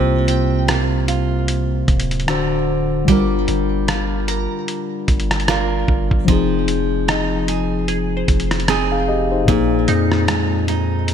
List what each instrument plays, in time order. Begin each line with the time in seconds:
Already playing: 808-style bass C2, tine electric piano C3 A#3 F4 C5, nylon-string guitar C3
0.28 synth pluck G5, closed hi-hat
0.68 nylon-string guitar A#3, cross-stick, closed hi-hat
1.08 nylon-string guitar F4, closed hi-hat
1.48 closed hi-hat
1.88 808-style bass D1, kick, closed hi-hat
2.00 closed hi-hat
2.11 closed hi-hat
2.20 closed hi-hat
2.27 tine electric piano D3 D4 F#4 C5, nylon-string guitar D3, cross-stick, closed hi-hat
3.05 808-style bass G1, tine electric piano G3 D4, nylon-string guitar G3, synth pluck D6, kick, closed hi-hat
3.10 tine electric piano F4 A#4
3.48 808-style bass G1, closed hi-hat
3.88 nylon-string guitar F4, cross-stick, closed hi-hat
4.28 nylon-string guitar A#4, synth pluck A#5, closed hi-hat
4.68 closed hi-hat
5.08 808-style bass G1, kick, closed hi-hat
5.20 closed hi-hat
5.31 cross-stick, closed hi-hat
5.40 closed hi-hat
5.48 nylon-string guitar D4 F4 A#4, cross-stick, closed hi-hat
5.88 808-style bass G1, kick
6.11 808-style bass G1, kick
6.25 808-style bass F1, tine electric piano F3 C4, nylon-string guitar F3, kick, closed hi-hat
6.30 tine electric piano D#4 G#4
6.68 closed hi-hat
7.08 nylon-string guitar D#4, synth pluck D#5, cross-stick, closed hi-hat
7.48 nylon-string guitar G#4, closed hi-hat
7.88 synth pluck G#4, closed hi-hat
8.17 synth pluck C5
8.28 808-style bass F1, kick, closed hi-hat
8.40 closed hi-hat
8.51 cross-stick, closed hi-hat
8.60 closed hi-hat
8.68 nylon-string guitar C4 D#4 G#4, cross-stick, closed hi-hat
8.92 tine electric piano G#4 F5
9.08 tine electric piano G4 D#5
9.32 tine electric piano D#4 C5
9.45 808-style bass A#1, tine electric piano A#2 A#3, nylon-string guitar A#2, kick, closed hi-hat
9.50 tine electric piano D#4 G#4
9.88 808-style bass F2, synth pluck D#4, closed hi-hat
10.12 cross-stick
10.28 nylon-string guitar G#3, cross-stick, closed hi-hat
10.68 nylon-string guitar D#4, closed hi-hat
11.08 closed hi-hat